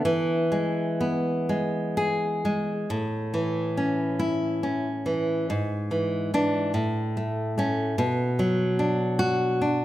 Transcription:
0.05 2.85 E3 medium
0.52 1.48 G#3 medium
1.01 2.44 B3 medium
1.49 2.44 G#3 medium
1.97 2.72 G#4 medium
2.45 2.89 G#3 medium
2.90 5.44 A2 medium
3.34 4.62 E3 soft
3.77 4.62 C#4 medium
4.19 4.87 E4 medium
4.63 5.49 C#4 medium
5.06 5.48 E3 medium
5.50 6.71 G#2 medium
5.91 6.33 E3 soft
6.34 6.71 E3 medium
6.34 6.71 D4 medium
6.74 7.95 A2 medium
7.17 7.56 A3 soft
7.58 7.95 A3 soft
7.58 7.95 C#4 medium
7.98 9.85 B2 medium
8.39 9.61 F#3 medium
8.79 9.60 D4 medium
9.19 9.84 F#4 medium
9.61 9.85 D4 medium

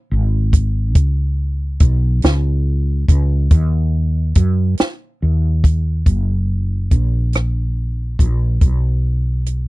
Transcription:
0.11 0.96 G#1 medium
0.53 kick medium
0.53 closed hi-hat medium
0.95 1.77 C#2 loud
0.95 kick loud
0.95 closed hi-hat medium
1.80 2.20 B1 medium
1.80 kick loud
1.80 closed hi-hat medium
2.22 3.05 C#2 loud
2.22 snare loud
2.22 closed hi-hat medium
3.08 3.47 C#2 loud
3.08 kick medium
3.08 closed hi-hat medium
3.51 4.33 D#2 loud
3.51 kick loud
3.51 closed hi-hat medium
4.35 4.75 F#2 medium
4.35 kick loud
4.35 closed hi-hat medium
4.78 muted fretless electric bass stroke soft
4.78 snare loud
4.78 closed hi-hat medium
5.22 6.03 D#2 medium
5.64 kick loud
5.64 closed hi-hat medium
6.06 6.88 F#1 medium
6.06 kick medium
6.06 closed hi-hat medium
6.91 8.16 A#1 medium
6.91 kick medium
6.91 closed hi-hat medium
7.33 cross-stick medium
7.33 closed hi-hat medium
8.19 8.58 A#1 medium
8.19 kick medium
8.19 closed hi-hat medium
8.61 9.68 B1 medium
8.61 kick medium
8.61 closed hi-hat medium
9.46 closed hi-hat medium

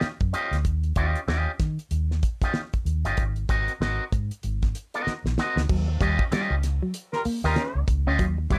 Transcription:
0.01 muted fingered electric bass stroke soft
0.01 snare medium
0.20 0.32 F#2 medium
0.20 kick medium
0.20 closed hi-hat soft
0.33 0.56 C#4 medium
0.33 0.56 F4 medium
0.33 0.56 G4 medium
0.33 0.56 D#5 medium
0.33 closed hi-hat medium
0.51 0.63 D2 medium
0.51 snare soft
0.51 closed hi-hat soft
0.65 0.93 D#2 medium
0.65 kick medium
0.65 closed hi-hat medium
0.83 closed hi-hat soft
0.96 1.13 D#2 medium
0.96 1.19 C#4 medium
0.96 1.19 F4 medium
0.96 1.20 G4 medium
0.96 1.20 D#5 medium
0.96 kick medium
0.96 closed hi-hat medium
1.15 closed hi-hat soft
1.27 1.45 D#2 medium
1.27 1.51 C#4 medium
1.27 1.51 F4 medium
1.27 1.51 G4 medium
1.27 1.51 D#5 medium
1.27 snare medium
1.59 1.77 D#3 medium
1.59 kick medium
1.59 snare soft
1.59 closed hi-hat medium
1.79 closed hi-hat soft
1.91 2.20 D#2 medium
1.91 closed hi-hat medium
2.11 snare soft
2.23 kick medium
2.23 closed hi-hat medium
2.42 2.61 C#4 medium
2.42 2.60 F4 medium
2.42 2.60 G4 medium
2.42 2.60 D#5 medium
2.42 kick medium
2.42 snare soft
2.42 closed hi-hat soft
2.54 snare medium
2.73 kick medium
2.73 closed hi-hat soft
2.85 3.03 D#2 medium
2.85 closed hi-hat medium
3.04 3.16 G1 medium
3.04 3.23 C#4 medium
3.04 3.23 F4 medium
3.04 3.23 G4 medium
3.04 3.23 D#5 medium
3.04 closed hi-hat medium
3.17 3.46 G#1 medium
3.17 kick medium
3.17 closed hi-hat medium
3.36 closed hi-hat soft
3.49 3.66 G#1 medium
3.49 3.71 C4 medium
3.49 3.71 F#4 medium
3.49 3.72 A#4 medium
3.49 3.72 D#5 medium
3.49 kick medium
3.49 closed hi-hat medium
3.68 closed hi-hat soft
3.80 3.97 G#1 medium
3.80 4.03 C4 medium
3.80 4.03 F#4 medium
3.80 4.04 A#4 medium
3.80 4.04 D#5 medium
3.80 snare loud
4.12 4.29 G#2 medium
4.12 kick medium
4.12 closed hi-hat medium
4.31 closed hi-hat soft
4.43 4.72 G#1 medium
4.43 closed hi-hat medium
4.62 kick medium
4.62 snare soft
4.62 closed hi-hat soft
4.75 closed hi-hat medium
4.94 5.12 C4 medium
4.94 5.13 F#4 medium
4.94 5.12 A#4 medium
4.94 5.12 D#5 medium
4.94 closed hi-hat soft
5.07 muted fingered electric bass stroke soft
5.07 snare medium
5.24 5.36 A#1 medium
5.24 snare medium
5.38 5.61 C4 medium
5.38 5.61 F#4 medium
5.38 5.61 A#4 medium
5.38 5.61 D#5 medium
5.38 snare medium
5.56 5.68 D2 medium
5.56 snare medium
5.69 5.98 D#2 loud
5.69 5.84 F#3 medium
5.69 kick loud
5.69 crash medium
5.88 muted clean electric guitar stroke soft
6.01 6.17 D#2 loud
6.01 6.16 G3 medium
6.01 6.23 C#4 loud
6.01 6.23 F4 medium
6.01 6.23 G4 medium
6.01 6.23 D#5 loud
6.01 kick loud
6.01 closed hi-hat medium
6.19 kick loud
6.31 6.47 G3 medium
6.31 6.54 C#4 medium
6.31 6.54 F4 medium
6.31 6.55 G4 medium
6.31 6.55 D#5 loud
6.31 muted fingered electric bass stroke medium
6.31 snare loud
6.31 closed hi-hat medium
6.50 6.79 C#2 medium
6.50 muted clean electric guitar stroke medium
6.63 snare soft
6.63 closed hi-hat medium
6.82 6.92 F#3 medium
6.94 closed hi-hat medium
7.13 7.21 G3 medium
7.13 7.21 F4 medium
7.13 7.21 A#4 loud
7.13 snare soft
7.25 7.41 A#3 medium
7.25 muted fingered electric bass stroke soft
7.25 open hi-hat medium
7.43 7.55 D#2 medium
7.43 7.81 G3 loud
7.43 7.63 C#4 medium
7.43 7.81 F4 medium
7.43 7.62 F4 medium
7.43 7.62 G4 medium
7.43 7.81 A#4 loud
7.43 7.62 D#5 medium
7.43 snare soft
7.56 7.72 C#4 medium
7.56 snare loud
7.56 closed hi-hat medium
7.75 7.87 C#2 loud
7.87 8.05 C#2 medium
7.87 muted clean electric guitar stroke soft
7.87 kick loud
7.87 closed hi-hat medium
8.06 8.19 D2 medium
8.06 8.17 C#4 medium
8.06 8.25 C#4 medium
8.06 8.25 F4 medium
8.06 8.24 G4 medium
8.06 8.24 D#5 medium
8.19 8.47 D#2 loud
8.19 8.35 F#3 loud
8.19 kick loud
8.19 closed hi-hat medium
8.38 muted clean electric guitar stroke soft
8.50 8.59 D#2 loud
8.50 8.59 G3 medium
8.50 8.59 C#4 medium
8.50 8.59 F4 medium
8.50 8.59 G4 medium
8.50 8.59 D#5 medium
8.50 kick loud
8.50 closed hi-hat medium

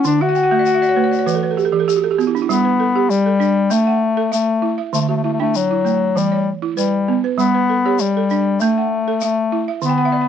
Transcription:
0.00 0.20 F#5 medium
0.04 0.35 D3 medium
0.04 0.23 D4 medium
0.04 shaker medium
0.21 1.74 F#4 loud
0.21 0.34 E5 medium
0.29 0.42 F#5 medium
0.35 0.50 G5 medium
0.35 shaker soft
0.43 0.57 F#5 medium
0.51 0.81 A3 medium
0.51 0.64 E5 medium
0.59 0.73 D5 medium
0.66 0.81 F#5 medium
0.66 shaker medium
0.74 0.88 E5 medium
0.82 0.95 D5 medium
0.82 shaker soft
0.89 1.03 C#5 medium
0.96 1.27 A3 medium
0.96 1.11 B4 medium
1.04 1.18 C#5 medium
1.11 1.25 D5 medium
1.11 shaker soft
1.19 1.33 C#5 medium
1.26 1.57 E3 medium
1.26 1.41 B4 medium
1.26 shaker medium
1.35 1.49 A4 medium
1.43 1.56 B4 medium
1.51 1.64 A4 medium
1.57 1.71 G4 medium
1.57 shaker soft
1.65 1.79 A4 medium
1.72 2.03 E3 medium
1.72 1.86 G4 medium
1.80 1.94 A4 medium
1.88 2.02 G4 medium
1.88 shaker medium
1.96 2.10 F#4 medium
2.04 2.17 A4 medium
2.11 2.25 G4 medium
2.18 2.49 B3 medium
2.18 2.33 F#4 medium
2.18 shaker soft
2.27 2.41 E4 medium
2.35 2.48 D4 medium
2.35 shaker soft
2.42 2.56 E4 medium
2.49 2.79 G3 medium
2.49 3.12 B3 loud
2.49 shaker medium
2.65 3.10 B4 medium
2.80 3.25 A4 medium
2.96 3.26 G4 medium
3.10 3.74 G3 loud
3.10 shaker medium
3.26 3.71 A4 medium
3.40 3.71 D4 medium
3.40 shaker soft
3.70 4.01 A3 medium
3.70 4.33 A3 medium
3.70 shaker medium
3.87 4.32 F#5 medium
4.17 4.48 A4 medium
4.32 4.76 A3 medium
4.32 4.77 E5 medium
4.32 shaker medium
4.62 4.93 E4 medium
4.78 5.09 E5 medium
4.93 5.24 D3 medium
4.93 5.01 A3 medium
4.93 shaker medium
5.01 5.09 A3 medium
5.09 5.16 A3 medium
5.09 5.54 F#4 medium
5.17 5.23 A3 medium
5.24 5.31 A3 medium
5.24 5.70 E4 medium
5.34 5.40 A3 medium
5.39 5.58 A3 medium
5.39 5.70 D4 medium
5.39 5.85 G5 medium
5.55 6.19 F#3 medium
5.55 shaker medium
5.71 6.16 E4 medium
5.85 6.15 A3 medium
5.85 shaker soft
6.16 6.46 E3 medium
6.16 6.50 G3 medium
6.16 shaker medium
6.32 6.77 C#5 medium
6.62 6.93 E4 medium
6.77 7.21 G3 medium
6.77 7.23 B4 medium
6.77 shaker medium
7.08 7.38 B3 medium
7.24 7.53 B4 medium
7.38 7.68 G3 medium
7.38 8.02 B3 loud
7.38 shaker medium
7.55 7.99 B4 medium
7.69 8.16 A4 medium
7.85 8.16 G4 medium
7.85 8.30 C#5 medium
7.99 8.62 G3 medium
7.99 shaker medium
8.17 8.61 A4 medium
8.30 8.61 D4 medium
8.30 shaker soft
8.60 9.22 A3 medium
8.60 8.91 A3 medium
8.60 shaker medium
8.78 9.22 F#5 medium
9.08 9.52 A4 medium
9.21 9.66 A3 medium
9.21 9.67 E5 medium
9.21 shaker medium
9.52 9.83 E4 medium
9.68 9.99 E5 medium
9.82 10.13 D3 medium
9.82 10.28 B3 medium
9.82 shaker medium
9.89 10.04 G5 medium
9.98 10.12 F#5 medium
10.05 10.20 E5 medium
10.12 10.28 D5 medium
10.21 10.28 F#5 medium

